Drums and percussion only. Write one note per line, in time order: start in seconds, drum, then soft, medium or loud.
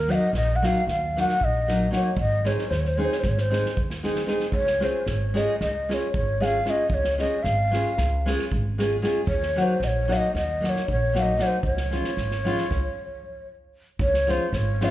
0.10 snare soft
0.34 snare soft
0.63 snare soft
0.88 snare soft
1.17 snare soft
1.29 snare soft
1.41 kick medium
1.68 snare soft
1.93 snare soft
2.17 kick medium
2.45 snare soft
2.58 snare soft
2.71 snare soft
2.85 snare soft
3.12 snare soft
3.23 kick medium
3.23 snare soft
3.38 snare soft
3.53 snare soft
3.66 snare soft
3.77 kick medium
3.90 snare soft
4.04 snare soft
4.16 snare soft
4.28 snare soft
4.40 snare soft
4.52 kick medium
4.67 snare soft
4.81 snare soft
5.06 snare soft
5.36 snare soft
5.61 snare soft
5.90 snare soft
6.14 kick medium
6.42 snare soft
6.66 snare soft
6.90 kick medium
7.04 snare soft
7.19 snare soft
7.44 snare soft
7.73 snare soft
7.98 snare soft
8.27 snare soft
8.39 snare soft
8.52 kick medium
8.79 snare soft
9.04 snare soft
9.27 kick medium
9.43 snare soft
9.57 snare soft
9.82 snare soft
10.11 snare soft
10.35 snare soft
10.64 snare soft
10.76 snare soft
10.88 kick medium
11.15 snare soft
11.39 snare soft
11.63 kick medium
11.77 snare soft
11.91 snare soft
12.04 snare soft
12.17 snare soft
12.31 snare soft
12.45 snare soft
12.58 snare soft
12.71 kick medium
12.71 snare soft
13.99 kick medium
14.14 snare soft
14.28 snare soft
14.53 snare soft
14.81 snare soft